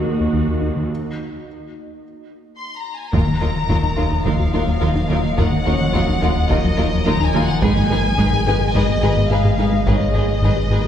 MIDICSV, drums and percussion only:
0, 0, Header, 1, 2, 480
1, 0, Start_track
1, 0, Key_signature, -6, "minor"
1, 0, Tempo, 560748
1, 764, Time_signature, 4, 2, 24, 8
1, 9308, End_track
2, 0, Start_track
2, 0, Title_t, "Taiko and cinematic ensemble drums"
2, 2682, Note_on_c, 9, 41, 78
2, 2767, Note_off_c, 9, 41, 0
2, 3163, Note_on_c, 9, 41, 63
2, 3249, Note_off_c, 9, 41, 0
2, 3643, Note_on_c, 9, 41, 71
2, 3728, Note_off_c, 9, 41, 0
2, 4603, Note_on_c, 9, 41, 79
2, 4689, Note_off_c, 9, 41, 0
2, 5084, Note_on_c, 9, 41, 65
2, 5170, Note_off_c, 9, 41, 0
2, 5566, Note_on_c, 9, 41, 75
2, 5652, Note_off_c, 9, 41, 0
2, 6526, Note_on_c, 9, 41, 88
2, 6612, Note_off_c, 9, 41, 0
2, 7006, Note_on_c, 9, 41, 72
2, 7092, Note_off_c, 9, 41, 0
2, 7489, Note_on_c, 9, 41, 74
2, 7575, Note_off_c, 9, 41, 0
2, 8447, Note_on_c, 9, 41, 81
2, 8533, Note_off_c, 9, 41, 0
2, 8927, Note_on_c, 9, 41, 61
2, 9012, Note_off_c, 9, 41, 0
2, 9308, End_track
0, 0, End_of_file